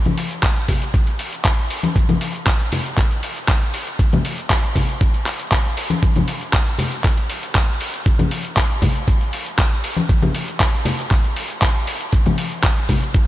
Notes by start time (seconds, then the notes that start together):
0.05 closed hi-hat, high conga, low conga, shaker
0.18 open hi-hat, shaker
0.31 closed hi-hat, shaker
0.43 kick, clap, closed hi-hat, shaker
0.56 closed hi-hat, shaker
0.68 kick, open hi-hat, low conga, shaker
0.82 closed hi-hat, shaker
0.94 kick, closed hi-hat, shaker
1.07 closed hi-hat, shaker
1.19 open hi-hat, shaker
1.33 closed hi-hat, shaker
1.45 kick, clap, closed hi-hat, shaker
1.59 shaker
1.70 open hi-hat, shaker
1.83 closed hi-hat, high conga, shaker
1.96 kick, closed hi-hat, shaker
2.09 closed hi-hat, high conga, low conga, shaker
2.21 open hi-hat, shaker
2.34 closed hi-hat, shaker
2.47 kick, clap, closed hi-hat, shaker
2.60 closed hi-hat, shaker
2.72 open hi-hat, low conga, shaker
2.85 closed hi-hat, shaker
2.98 kick, clap, closed hi-hat, shaker
3.11 closed hi-hat, shaker
3.23 open hi-hat, shaker
3.36 closed hi-hat, shaker
3.48 kick, clap, closed hi-hat, shaker
3.62 shaker
3.74 open hi-hat, shaker
3.87 closed hi-hat, shaker
3.99 kick, closed hi-hat, shaker
4.13 closed hi-hat, high conga, low conga, shaker
4.25 open hi-hat, shaker
4.38 closed hi-hat, shaker
4.50 kick, clap, closed hi-hat, shaker
4.63 closed hi-hat, shaker
4.76 kick, open hi-hat, low conga, shaker
4.89 closed hi-hat, shaker
5.01 kick, closed hi-hat, shaker
5.14 closed hi-hat, shaker
5.26 clap, open hi-hat, shaker
5.40 closed hi-hat, shaker
5.52 kick, clap, closed hi-hat, shaker
5.65 closed hi-hat, shaker
5.77 open hi-hat, shaker
5.90 closed hi-hat, high conga, shaker
6.02 kick, closed hi-hat, shaker
6.16 closed hi-hat, high conga, low conga, shaker
6.28 open hi-hat, shaker
6.41 closed hi-hat, shaker
6.53 kick, clap, closed hi-hat, shaker
6.67 closed hi-hat, shaker
6.78 open hi-hat, low conga, shaker
6.92 closed hi-hat, shaker
7.04 kick, clap, closed hi-hat, shaker
7.17 closed hi-hat, shaker
7.30 open hi-hat, shaker
7.43 closed hi-hat, shaker
7.55 kick, clap, closed hi-hat, shaker
7.69 shaker
7.80 open hi-hat, shaker
7.94 closed hi-hat, shaker
8.06 kick, closed hi-hat, shaker
8.19 closed hi-hat, high conga, low conga, shaker
8.31 open hi-hat, shaker
8.45 closed hi-hat, shaker
8.57 kick, clap, closed hi-hat, shaker
8.70 closed hi-hat, shaker
8.82 kick, open hi-hat, low conga, shaker
8.96 closed hi-hat, shaker
9.08 kick, closed hi-hat, shaker
9.21 closed hi-hat, shaker
9.33 open hi-hat, shaker
9.46 closed hi-hat, shaker
9.59 kick, clap, closed hi-hat, shaker
9.73 shaker
9.84 open hi-hat, shaker
9.97 closed hi-hat, high conga, shaker
10.09 kick, closed hi-hat, shaker
10.22 closed hi-hat, high conga, low conga, shaker
10.35 open hi-hat, shaker
10.48 closed hi-hat, shaker
10.60 kick, clap, closed hi-hat, shaker
10.73 closed hi-hat, shaker
10.85 open hi-hat, low conga, shaker
10.99 closed hi-hat, shaker
11.11 kick, clap, closed hi-hat, shaker
11.24 closed hi-hat, shaker
11.36 open hi-hat, shaker
11.50 closed hi-hat, shaker
11.62 kick, clap, closed hi-hat, shaker
11.76 shaker
11.87 open hi-hat, shaker
12.00 closed hi-hat, shaker
12.12 kick, closed hi-hat, shaker
12.26 closed hi-hat, high conga, low conga, shaker
12.38 open hi-hat, shaker
12.51 closed hi-hat, shaker
12.63 kick, clap, closed hi-hat, shaker
12.77 closed hi-hat, shaker
12.89 kick, open hi-hat, low conga, shaker
13.02 closed hi-hat, shaker
13.14 kick, closed hi-hat, shaker